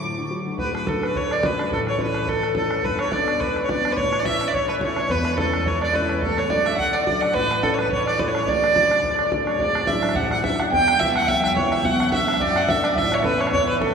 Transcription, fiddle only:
0.00 0.30 D6 loud
0.60 0.74 B4 medium
0.76 0.90 B4 medium
0.88 1.07 A4 medium
1.05 1.18 B4 medium
1.17 1.34 C#5 medium
1.33 1.47 D5 medium
1.45 1.72 B4 medium
1.73 1.80 A4 loud
1.89 2.00 C#5 medium
2.02 2.30 B4 medium
2.29 2.56 A4 loud
2.56 2.86 A4 medium
2.84 3.00 B4 loud
3.01 3.14 C#5 medium
3.13 3.41 D5 medium
3.40 3.62 B4 medium
3.64 3.71 C#5 medium
3.69 3.93 D5 loud
3.92 3.98 B4 medium
3.96 4.21 C#5 loud
4.19 4.27 D5 medium
4.25 4.49 E5 loud
4.47 4.56 D5 medium
4.54 4.68 C#5 loud
4.69 4.74 B4 medium
4.82 5.12 C#5 medium
5.11 5.38 B4 loud
5.39 5.69 A4 medium
5.67 5.82 C#5 medium
5.83 5.96 D5 medium
5.95 6.22 B4 medium
6.23 6.40 A4 loud
6.38 6.51 C#5 medium
6.50 6.67 D5 medium
6.66 6.77 E5 loud
6.77 6.94 F#5 loud
6.93 7.04 D5 medium
7.05 7.22 D5 loud
7.21 7.35 F#5 medium
7.33 7.64 B4 loud
7.62 7.75 A4 loud
7.74 7.80 C#5 medium
7.78 7.91 B4 loud
7.91 8.06 C#5 loud
8.07 8.21 D5 loud
8.19 8.29 B4 medium
8.28 8.50 C#5 medium
8.48 9.32 D5 loud
9.46 9.62 C#5 medium
9.60 9.89 D5 loud
9.87 10.17 E5 loud
10.16 10.31 F#5 loud
10.32 10.43 F#5 medium
10.44 10.61 E5 medium
10.59 10.71 F#5 medium
10.72 11.01 G5 loud
10.99 11.15 E5 loud
11.16 11.29 F#5 loud
11.28 11.43 E5 loud
11.44 11.55 E5 medium
11.56 11.73 C#5 medium
11.72 11.86 E5 loud
11.85 12.13 F#5 loud
12.13 12.43 E5 loud
12.41 12.58 D5 loud
12.57 12.71 F#5 loud
12.70 12.86 E5 loud
12.84 12.99 D5 medium
12.98 13.15 E5 loud
13.13 13.24 C#5 medium
13.22 13.26 A4 medium
13.22 13.42 B4 loud
13.41 13.51 C#5 loud
13.52 13.67 C#5 loud
13.69 13.80 B4 medium
13.81 13.94 A4 medium

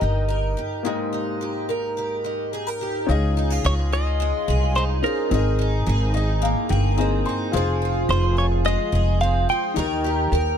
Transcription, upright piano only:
0.00 0.81 A#3 medium
0.00 0.81 D#4 medium
0.00 0.82 G4 medium
0.00 0.82 D#5 medium
0.83 3.03 A#3 medium
0.83 3.04 D#4 medium
0.83 3.04 G4 medium
0.83 3.05 D#5 medium
3.06 4.98 C#4 medium
3.06 4.99 D#4 medium
3.06 4.99 F4 medium
3.06 5.00 G#4 medium
3.06 5.00 D#5 medium
5.02 5.31 C#4 medium
5.02 5.29 D#4 soft
5.02 5.31 F4 soft
5.02 5.30 G#4 soft
5.02 5.31 C5 medium
5.30 6.94 C4 medium
5.30 6.94 D#4 medium
5.30 6.95 G#4 medium
5.30 6.95 A#4 medium
5.34 6.13 D#5 medium
6.14 6.40 D#5 medium
6.43 6.68 F5 medium
6.70 6.96 G5 medium
6.97 7.53 C4 medium
6.97 7.53 D#4 soft
6.97 7.52 G#4 medium
6.97 7.54 A#4 medium
6.97 7.54 D#5 medium
6.97 7.24 G#5 medium
7.26 7.52 C6 medium
7.51 9.71 F4 medium
7.51 9.72 G#4 medium
7.55 9.73 C5 medium
9.74 10.58 D#4 medium
9.74 10.58 G4 medium
9.74 10.58 A#4 medium

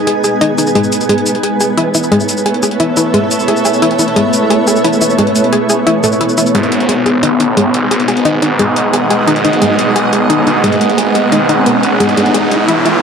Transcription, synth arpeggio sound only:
0.07 0.18 G#4 medium
0.24 0.35 G#4 medium
0.41 0.52 D#4 loud
0.58 0.65 D#4 medium
0.75 0.86 G#3 loud
1.09 1.20 G#3 loud
1.43 1.54 G#4 medium
1.61 1.71 G#4 medium
1.77 1.88 E4 loud
1.95 2.01 E4 medium
2.12 2.22 G#3 loud
2.46 2.57 G#4 medium
2.63 2.74 G#4 medium
2.80 2.91 E4 loud
2.97 3.03 E4 medium
3.14 3.25 G#3 loud
3.48 3.59 G#4 medium
3.65 3.76 G#4 medium
3.82 3.93 E4 loud
3.99 4.06 E4 medium
4.16 4.27 G#3 medium
4.50 4.61 G#4 medium
4.67 4.78 G#4 medium
4.84 4.95 E4 loud
5.01 5.08 E4 medium
5.19 5.29 G#3 loud
5.53 5.63 G#4 medium
5.70 5.80 G#4 medium
5.87 5.97 E4 loud
6.04 6.15 A3 loud
6.21 6.37 E4 medium
6.38 6.49 E4 medium
6.55 6.66 G#3 loud
6.89 7.00 G#4 medium
7.06 7.17 G#4 medium
7.23 7.34 D#4 loud
7.40 7.47 D#4 medium
7.57 7.68 G#3 loud
7.91 8.02 G#4 medium
8.08 8.19 G#4 medium
8.25 8.36 D#4 loud
8.42 8.49 D#4 medium
8.59 8.70 G#3 loud
8.93 9.04 G#4 medium
9.11 9.21 G#4 medium
9.28 9.38 D#4 loud
9.45 9.51 D#4 medium
9.62 9.72 G#3 loud
9.96 10.07 G#4 medium
10.13 10.24 G#4 medium
10.30 10.41 D#4 loud
10.47 10.53 D#4 medium
10.64 10.75 G#3 loud
10.98 11.09 G#4 medium
11.15 11.26 G#4 medium
11.32 11.43 D#4 loud
11.49 11.56 D#4 medium
11.66 11.77 B3 medium
12.00 12.11 G#3 loud
12.17 12.34 G#3 medium
12.34 12.45 G#4 medium
12.51 12.62 G#4 medium
12.69 12.79 E4 loud
12.85 12.92 E4 medium

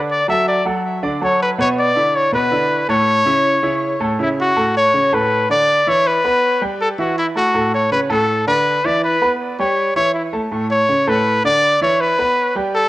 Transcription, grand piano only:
0.00 0.21 D3 medium
0.00 0.21 D4 medium
0.00 0.22 D5 medium
0.28 0.59 F#3 medium
0.28 0.59 F#4 medium
0.28 0.59 A4 medium
0.65 0.96 F#3 medium
0.65 0.96 F#4 medium
0.65 0.96 A4 medium
1.03 1.18 D3 medium
1.03 1.18 D4 medium
1.03 1.18 D5 medium
1.21 1.52 F#3 medium
1.21 1.52 F#4 medium
1.21 1.52 A4 medium
1.58 1.89 B2 medium
1.58 1.89 B3 medium
1.58 1.89 B4 medium
1.95 2.26 D3 medium
1.95 2.26 D4 medium
1.95 2.27 E4 medium
2.32 2.48 B2 medium
2.32 2.48 B3 medium
2.32 2.48 B4 medium
2.51 2.82 D3 medium
2.51 2.82 D4 medium
2.51 2.82 E4 medium
2.89 3.19 A2 medium
2.89 3.19 A3 medium
2.89 3.20 A4 medium
3.26 3.56 C#3 medium
3.26 3.57 C#4 medium
3.26 3.57 E4 medium
3.63 3.93 C#3 medium
3.63 3.94 C#4 medium
3.63 3.94 E4 medium
4.00 4.16 A2 medium
4.00 4.16 A3 medium
4.00 4.16 A4 medium
4.19 4.50 C#3 medium
4.19 4.50 C#4 medium
4.19 4.50 E4 medium
4.56 4.87 A2 medium
4.56 4.87 A3 medium
4.56 4.87 A4 medium
4.93 5.09 C#3 medium
4.93 5.09 C#4 medium
4.93 5.09 C#5 medium
5.12 5.43 A2 medium
5.12 5.43 A3 medium
5.12 5.43 A4 medium
5.49 5.80 D3 medium
5.49 5.80 D4 medium
5.49 5.80 D5 medium
5.87 6.17 E3 medium
5.87 6.17 E4 medium
5.87 6.17 E5 medium
6.24 6.55 B3 medium
6.24 6.55 B4 medium
6.24 6.55 B5 medium
6.61 6.92 G3 medium
6.61 6.92 G4 medium
6.61 6.92 G5 medium
6.98 7.29 E3 medium
6.98 7.29 E4 medium
6.98 7.29 E5 medium
7.35 7.51 A3 medium
7.35 7.51 A4 medium
7.35 7.51 A5 medium
7.54 7.84 A2 medium
7.54 7.85 A3 medium
7.54 7.85 A4 medium
7.91 8.07 C#3 medium
7.91 8.07 C#4 medium
7.91 8.07 C#5 medium
8.09 8.40 A2 medium
8.09 8.40 A3 medium
8.09 8.40 A4 loud
8.47 8.77 D3 medium
8.47 8.78 D4 medium
8.47 8.78 D5 medium
8.84 9.15 E3 medium
8.84 9.15 E4 medium
8.84 9.15 E5 medium
9.21 9.52 B3 medium
9.21 9.52 B4 medium
9.21 9.52 B5 medium
9.59 9.89 G3 medium
9.59 9.89 G4 medium
9.59 9.90 G5 medium
9.96 10.26 E3 medium
9.96 10.26 E4 medium
9.96 10.26 E5 medium
10.33 10.48 A3 medium
10.33 10.48 A4 medium
10.33 10.48 A5 medium
10.51 10.82 A2 medium
10.51 10.82 A3 medium
10.51 10.82 A4 medium
10.89 11.04 C#3 medium
10.89 11.04 C#4 medium
10.89 11.04 C#5 medium
11.07 11.37 A2 medium
11.07 11.38 A3 medium
11.07 11.38 A4 medium
11.44 11.75 D3 medium
11.44 11.75 D4 medium
11.44 11.75 D5 medium
11.82 12.12 E3 medium
11.82 12.12 E4 medium
11.82 12.12 E5 medium
12.19 12.49 B3 medium
12.19 12.49 B4 medium
12.19 12.49 B5 medium
12.56 12.86 G3 medium
12.56 12.86 G4 medium
12.56 12.86 G5 medium

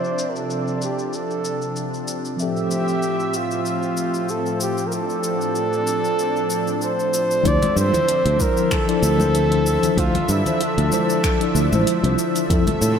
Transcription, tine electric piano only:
0.00 2.34 F3 medium
0.00 2.35 D4 medium
0.00 2.37 E4 medium
0.00 2.37 C5 medium
2.37 7.40 F3 medium
2.37 7.41 C4 medium
2.37 7.42 E5 medium
2.42 7.43 A4 medium
7.43 7.60 F3 loud
7.43 7.60 D4 medium
7.43 7.61 E4 medium
7.43 7.61 C5 loud
7.92 8.06 F3 medium
7.92 8.06 D4 medium
7.92 8.07 E4 medium
7.92 8.07 C5 medium
8.36 8.83 F3 medium
8.36 8.83 D4 medium
8.36 8.84 E4 medium
8.36 8.84 C5 loud
8.86 9.15 F3 medium
8.86 9.15 D4 medium
8.86 9.16 E4 medium
8.86 9.16 D5 loud
9.18 9.47 F3 medium
9.18 9.47 D4 medium
9.18 9.47 E4 medium
9.18 9.48 C5 loud
9.49 9.93 F3 medium
9.49 9.93 D4 medium
9.49 9.94 E4 medium
9.49 9.94 C5 loud
9.95 10.12 F3 loud
9.95 10.13 D4 loud
9.95 10.13 E4 medium
9.95 10.14 C5 loud
10.45 10.59 F3 medium
10.45 10.59 D4 medium
10.45 10.59 E4 medium
10.45 10.60 C5 medium
10.91 11.36 F3 medium
10.91 11.37 D4 medium
10.91 11.37 E4 medium
10.91 11.38 C5 loud
11.40 11.68 F3 medium
11.40 11.69 D4 medium
11.40 11.69 E4 medium
11.40 11.69 D5 medium
11.72 12.00 F3 medium
11.72 12.00 D4 medium
11.72 12.01 E4 medium
11.72 12.01 C5 loud
12.03 12.46 F3 loud
12.03 12.47 D4 medium
12.03 12.47 E4 medium
12.03 12.48 C5 loud
12.49 12.66 F3 loud
12.49 12.66 C4 medium
12.49 12.66 E4 medium
12.49 12.67 A4 loud

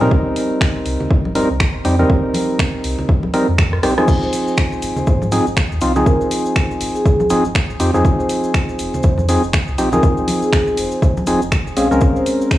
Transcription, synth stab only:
0.01 1.33 G3 medium
0.01 1.33 C4 medium
0.01 1.33 D#4 medium
0.01 1.33 A#4 medium
1.35 1.49 G3 medium
1.35 1.49 C4 medium
1.35 1.49 D#4 medium
1.35 1.49 A#4 loud
1.85 1.96 G3 medium
1.85 1.96 C4 medium
1.85 1.96 D#4 medium
1.85 1.96 G4 medium
1.99 3.31 G3 medium
1.99 3.31 C4 medium
1.99 3.31 D#4 medium
1.99 3.31 A#4 medium
3.34 3.47 G3 medium
3.34 3.47 C4 medium
3.34 3.47 D#4 medium
3.34 3.47 A#4 loud
3.83 3.94 G3 medium
3.83 3.94 C4 medium
3.83 3.94 D#4 medium
3.83 3.94 G4 medium
3.98 5.30 F3 medium
3.98 5.30 C4 medium
3.98 5.30 D#4 medium
3.98 5.30 G#4 medium
5.32 5.46 F3 medium
5.32 5.46 C4 medium
5.32 5.46 D#4 medium
5.32 5.46 G#4 loud
5.81 5.93 F3 medium
5.81 5.93 C4 medium
5.81 5.93 D#4 medium
5.81 5.93 F4 medium
5.96 7.28 F3 medium
5.96 7.28 C4 medium
5.96 7.28 D#4 medium
5.96 7.28 G#4 medium
7.30 7.44 F3 medium
7.30 7.44 C4 medium
7.30 7.44 D#4 medium
7.30 7.44 G#4 loud
7.80 7.91 F3 medium
7.80 7.91 C4 medium
7.80 7.91 D#4 medium
7.80 7.91 G4 medium
7.94 9.26 F3 medium
7.94 9.26 C4 medium
7.94 9.26 D#4 medium
7.94 9.26 G#4 medium
9.29 9.42 F3 medium
9.29 9.42 C4 medium
9.29 9.42 D#4 medium
9.29 9.42 G#4 loud
9.78 9.89 F3 medium
9.78 9.89 C4 medium
9.78 9.89 D#4 medium
9.78 9.89 G4 medium
9.93 11.25 F3 medium
9.93 11.25 C4 medium
9.93 11.25 D#4 medium
9.93 11.25 G#4 medium
11.27 11.41 F3 medium
11.27 11.41 C4 medium
11.27 11.41 D#4 medium
11.27 11.41 G#4 loud
11.77 11.88 G#3 medium
11.77 11.88 C4 medium
11.77 11.88 C#4 medium
11.77 11.88 G#4 medium
11.91 12.58 G#3 medium
11.91 12.58 C4 medium
11.91 12.58 C#4 medium
11.91 12.58 A#4 medium

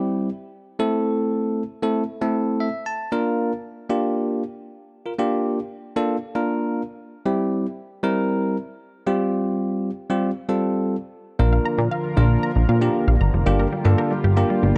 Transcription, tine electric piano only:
0.00 0.29 G3 medium
0.00 0.29 C4 medium
0.00 0.29 E4 medium
0.00 0.29 G4 medium
0.79 1.62 A3 medium
0.79 1.62 C4 medium
0.79 1.62 E4 medium
0.79 1.62 A4 medium
1.83 2.02 A3 medium
1.83 2.03 C4 medium
1.83 2.03 E4 medium
1.83 2.03 A4 medium
2.21 2.68 A3 medium
2.21 2.68 C4 medium
2.21 2.68 E4 medium
2.21 2.68 A4 medium
2.60 2.84 E5 medium
2.86 3.10 A5 medium
3.12 3.52 A#3 medium
3.12 3.52 D4 medium
3.12 3.52 F4 medium
3.12 3.52 A#4 medium
3.89 4.42 A#3 medium
3.89 4.42 D4 medium
3.89 4.42 F4 medium
3.89 4.43 G4 medium
5.06 5.12 F4 medium
5.06 5.13 A#4 medium
5.19 5.58 A#3 medium
5.19 5.58 D4 medium
5.19 5.58 F4 medium
5.19 5.59 G4 medium
5.96 6.16 A#3 medium
5.96 6.16 D4 medium
5.96 6.16 F4 medium
5.96 6.16 A4 medium
6.35 6.81 A#3 medium
6.35 6.81 D4 medium
6.35 6.81 F4 medium
6.35 6.82 A#4 medium
7.26 7.65 G3 medium
7.26 7.65 C4 medium
7.26 7.65 E4 medium
7.26 7.66 G4 medium
8.03 8.56 G3 medium
8.03 8.56 C4 medium
8.03 8.56 E4 medium
8.03 8.56 A#4 medium
9.07 9.89 G3 medium
9.07 9.90 C4 medium
9.07 9.90 F4 medium
9.07 9.90 G4 medium
10.10 10.30 G3 medium
10.10 10.30 C4 medium
10.10 10.30 F4 medium
10.10 10.30 G4 medium
10.49 10.95 G3 medium
10.49 10.95 C4 medium
10.49 10.95 F4 medium
10.49 10.95 A4 medium
11.39 11.79 A#3 medium
11.39 11.79 D4 medium
11.39 11.79 F4 medium
11.39 11.79 A#4 medium
12.17 12.50 A#3 medium
12.17 12.50 D4 medium
12.17 12.50 F4 medium
12.17 12.50 A#4 medium
12.81 13.15 A#3 medium
12.81 13.15 D4 medium
12.81 13.15 F4 medium
12.81 13.15 G4 medium
13.46 13.66 A#3 medium
13.46 13.66 D4 medium
13.46 13.66 F4 medium
13.46 13.66 G4 medium
13.85 14.11 A#3 medium
13.85 14.11 D4 medium
13.85 14.12 F4 medium
13.85 14.12 A4 medium
14.37 14.78 A#3 medium
14.37 14.78 D4 medium
14.37 14.78 F4 medium
14.37 14.78 G4 medium

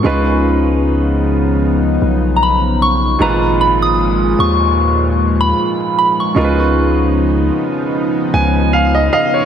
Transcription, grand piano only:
0.03 3.16 C#3 medium
0.03 3.16 G#3 medium
0.03 3.16 D#4 medium
0.03 3.17 F4 medium
0.03 3.17 B4 medium
3.19 6.31 G#2 medium
3.19 6.32 A#2 medium
3.19 6.32 G#3 medium
3.19 6.33 F4 medium
3.19 6.33 B4 medium
6.34 9.45 C#3 medium
6.34 9.45 G#3 medium
6.34 9.45 D#4 medium
6.34 9.45 F4 medium
6.34 6.44 A#4 medium
6.44 9.45 B4 medium
8.34 8.70 G#5 medium
8.73 9.10 F5 medium
8.95 9.11 D#5 medium
9.13 9.45 D#5 medium
9.13 9.33 F5 medium
9.34 9.45 C#5 medium

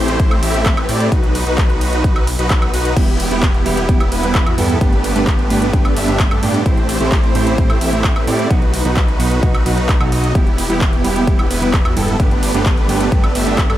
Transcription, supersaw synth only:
0.00 0.40 A3 loud
0.00 0.40 C4 medium
0.00 0.40 E4 medium
0.00 0.40 G4 medium
0.00 0.40 C5 loud
0.43 0.75 A3 loud
0.43 0.75 C4 medium
0.43 0.75 E4 loud
0.43 0.75 G4 medium
0.43 0.75 E5 loud
0.77 0.86 A3 medium
0.77 0.86 C4 medium
0.77 0.86 E4 medium
0.77 0.86 G4 medium
0.77 0.86 B4 loud
0.89 1.09 A3 medium
0.89 1.09 C4 medium
0.89 1.09 E4 medium
0.89 1.09 G4 medium
0.89 1.09 D5 medium
1.12 1.44 D#4 medium
1.12 1.44 F#4 medium
1.12 1.44 B4 medium
1.47 2.25 D#4 loud
1.47 2.25 F#4 medium
1.47 2.25 B4 loud
2.39 2.71 D#4 medium
2.39 2.71 F#4 medium
2.39 2.71 B4 loud
2.74 2.94 D#4 medium
2.74 2.94 F#4 medium
2.74 2.94 B4 loud
2.97 3.28 B3 medium
2.97 3.28 E4 medium
2.97 3.28 G4 medium
3.31 4.10 B3 loud
3.31 4.10 E4 medium
3.31 4.10 G4 loud
4.12 4.44 B3 loud
4.12 4.44 E4 medium
4.12 4.44 B4 loud
4.47 4.55 B3 medium
4.47 4.55 E4 medium
4.47 4.55 F#4 loud
4.58 4.78 B3 medium
4.58 4.78 E4 medium
4.58 4.78 A4 medium
4.81 5.13 A3 medium
4.81 5.13 B3 medium
4.81 5.13 D4 medium
4.81 5.13 G4 medium
4.81 5.13 B4 medium
5.16 5.94 A3 loud
5.16 5.94 B3 medium
5.16 5.94 D4 medium
5.16 5.94 G4 medium
5.16 5.94 B4 loud
5.97 6.28 A3 loud
5.97 6.28 B3 medium
5.97 6.28 D4 medium
5.97 6.28 G4 medium
5.97 6.28 E5 loud
6.31 6.40 A3 medium
6.31 6.40 B3 medium
6.31 6.40 D4 medium
6.31 6.40 G4 medium
6.31 6.40 A4 loud
6.43 6.63 A3 medium
6.43 6.63 B3 medium
6.43 6.63 D4 medium
6.43 6.63 G4 medium
6.43 6.63 D5 medium
6.66 6.98 A3 medium
6.66 6.98 C4 medium
6.66 6.98 E4 medium
6.66 6.98 G4 medium
6.66 6.98 C5 medium
7.00 7.79 A3 loud
7.00 7.79 C4 medium
7.00 7.79 E4 medium
7.00 7.79 G4 medium
7.00 7.79 C5 loud
7.81 8.13 A3 loud
7.81 8.13 C4 medium
7.81 8.13 E4 medium
7.81 8.13 G4 medium
7.81 8.13 E5 loud
8.16 8.25 A3 medium
8.16 8.25 C4 medium
8.16 8.25 E4 medium
8.16 8.25 G4 medium
8.16 8.25 B4 loud
8.27 8.48 A3 medium
8.27 8.48 C4 medium
8.27 8.48 E4 medium
8.27 8.48 G4 medium
8.27 8.48 D5 medium
8.85 9.64 D#4 loud
8.85 9.64 F#4 medium
8.85 9.64 B4 loud
9.66 9.98 D#4 loud
9.66 9.98 F#4 medium
9.66 9.98 B4 loud
10.01 10.09 D#4 medium
10.01 10.09 F#4 medium
10.01 10.09 A4 loud
10.12 10.32 D#4 medium
10.12 10.32 F#4 medium
10.12 10.32 D#5 medium
10.35 10.67 B3 medium
10.35 10.67 E4 medium
10.35 10.67 G4 medium
10.70 11.48 B3 loud
10.70 11.48 E4 medium
10.70 11.48 G4 loud
11.50 11.82 B3 loud
11.50 11.82 E4 loud
11.50 11.82 B4 loud
11.85 11.94 B3 medium
11.85 11.94 E4 medium
11.85 11.94 F#4 loud
11.96 12.17 B3 medium
11.96 12.17 E4 medium
11.96 12.17 A4 medium
12.20 12.51 A3 medium
12.20 12.51 B3 medium
12.20 12.51 D4 medium
12.20 12.51 G4 medium
12.20 12.51 B4 medium
12.54 13.33 A3 loud
12.54 13.33 B3 medium
12.54 13.33 D4 medium
12.54 13.33 G4 medium
12.54 13.33 B4 loud
13.35 13.67 A3 loud
13.35 13.67 B3 medium
13.35 13.67 D4 loud
13.35 13.67 G4 medium
13.35 13.67 E5 loud
13.70 13.78 A3 medium
13.70 13.78 B3 medium
13.70 13.78 D4 medium
13.70 13.78 G4 medium
13.70 13.78 A4 loud

